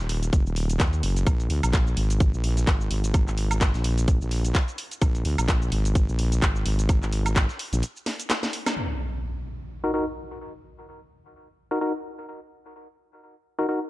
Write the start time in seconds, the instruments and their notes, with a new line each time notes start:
0.00 wobble bass D#1
0.09 closed hi-hat, open hi-hat
0.23 closed hi-hat, shaker
0.33 wobble bass F#1, kick, closed hi-hat, shaker
0.46 wobble bass D#1, shaker
0.56 open hi-hat
0.70 closed hi-hat, shaker
0.80 wobble bass D#2, kick, snare, clap, closed hi-hat, shaker
0.93 closed hi-hat, shaker
1.03 wobble bass F#1, closed hi-hat, open hi-hat
1.16 closed hi-hat, shaker
1.27 wobble bass A#1, kick, closed hi-hat, high woodblock, shaker
1.40 closed hi-hat, shaker
1.50 wobble bass D2, closed hi-hat, open hi-hat
1.63 wobble bass A#1, closed hi-hat, high woodblock, shaker
1.73 kick, snare, clap, closed hi-hat, shaker
1.87 shaker
1.97 wobble bass G#1, closed hi-hat, open hi-hat
2.10 closed hi-hat, shaker
2.20 kick, closed hi-hat, shaker
2.34 wobble bass A#1, shaker
2.44 closed hi-hat, open hi-hat
2.57 snare, closed hi-hat, shaker
2.67 wobble bass G#1, kick, snare, clap, closed hi-hat, shaker
2.81 shaker
2.91 wobble bass G#1, closed hi-hat, open hi-hat
3.04 closed hi-hat, shaker
3.14 kick, closed hi-hat, high woodblock, shaker
3.27 wobble bass G#1, clap, shaker
3.38 closed hi-hat, open hi-hat
3.51 closed hi-hat, high woodblock, shaker
3.61 kick, snare, clap, closed hi-hat, shaker
3.74 wobble bass A#1, snare, shaker
3.84 closed hi-hat, open hi-hat
3.98 closed hi-hat, shaker
4.08 kick, closed hi-hat, shaker
4.21 wobble bass A#1, shaker
4.31 open hi-hat
4.45 closed hi-hat, shaker
4.55 kick, snare, clap, closed hi-hat, shaker
4.68 closed hi-hat, shaker
4.78 closed hi-hat, open hi-hat
4.91 closed hi-hat, shaker
5.01 wobble bass A#1, kick, closed hi-hat, high woodblock, shaker
5.15 closed hi-hat, shaker
5.25 wobble bass D2, closed hi-hat, open hi-hat
5.38 wobble bass A#1, closed hi-hat, high woodblock, shaker
5.48 kick, snare, clap, closed hi-hat, shaker
5.62 shaker
5.72 wobble bass G#1, closed hi-hat, open hi-hat
5.85 closed hi-hat, shaker
5.95 kick, closed hi-hat, shaker
6.09 wobble bass A#1, shaker
6.19 closed hi-hat, open hi-hat
6.32 closed hi-hat, shaker
6.42 wobble bass G#1, kick, clap, closed hi-hat, shaker
6.56 shaker
6.66 wobble bass G#1, closed hi-hat, open hi-hat
6.79 closed hi-hat, shaker
6.89 kick, closed hi-hat, high woodblock, shaker
7.02 wobble bass G#1, clap, shaker
7.13 closed hi-hat, open hi-hat
7.26 closed hi-hat, high woodblock, shaker
7.36 kick, snare, clap, closed hi-hat, shaker
7.49 snare, shaker
7.59 closed hi-hat, open hi-hat
7.73 wobble bass A#1, closed hi-hat, shaker
7.83 closed hi-hat, shaker
7.97 shaker
8.06 snare, open hi-hat
8.20 closed hi-hat, shaker
8.30 snare, clap, closed hi-hat, shaker
8.43 snare, closed hi-hat, shaker
8.53 closed hi-hat, open hi-hat
8.66 snare, closed hi-hat, high woodblock, shaker
8.77 impact
9.84 synth stab D#4 F#4 A#4
9.94 synth stab D#4 F#4 A#4
11.71 synth stab D#4 F#4 A#4
11.81 synth stab D#4 F#4 A#4
13.59 synth stab D#4 F#4 A#4
13.69 synth stab D#4 F#4 A#4